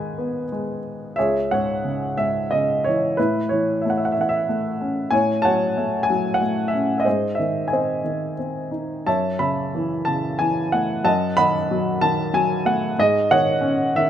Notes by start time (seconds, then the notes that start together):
Already playing: G#2 D#3 G#3 B4 G#5
0.18 B3
0.52 G#3
1.16 C#2 G#4 C#5 E5
1.51 G#2 C#5 F#5
1.84 C#3
2.17 G#2 E5
2.51 C#3 D#5
2.84 E3 C#5
3.17 A2 E4 B4
3.49 E3 C#5
3.82 A3 E5
3.90 F#5
3.97 E5
4.05 F#5
4.12 E5
4.19 E3 F#5
4.29 E5
4.49 A3
4.81 C#4
5.11 A2 C#5 G#5
5.42 F#3 C#5 F#5 A5
5.78 A3
6.03 G#5
6.10 F#3
6.34 F#5
6.41 A3
6.68 E5
6.74 C#4
6.98 D#5 E5
7.05 G#2 G#4 C5
7.35 E5
7.39 D#3
7.68 G#5
7.73 C4 C5 D#5
8.04 D#3
8.39 C4
8.71 D#4
9.06 F#2 C#5 E5 A5
9.39 C#3 E5 B5
9.75 E3
10.05 C#3 A5
10.39 E3 G#5
10.72 A3 F#5
11.04 F#2 D#5 F#5 A5
11.37 D#3 D#5 F#5 B5
11.71 F#3
12.01 D#3 A5
12.33 F#3 G#5
12.65 A3 F#5
12.99 G#2 G#4 D#5
13.31 D#3 C#5 D#5 F#5
13.61 C#4
13.96 D#3 E5